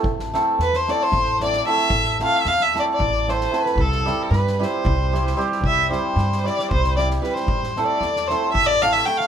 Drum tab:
SD |-oo-ooo---oooo|-oo-ooo---oooo|-oo-ooo---oooo|--o-oooo-ooooo|
BD |o-------o-----|o-------o-----|o-------o-----|o-------o-----|

SD |-oo-ooo---oooo|
BD |o-------o-----|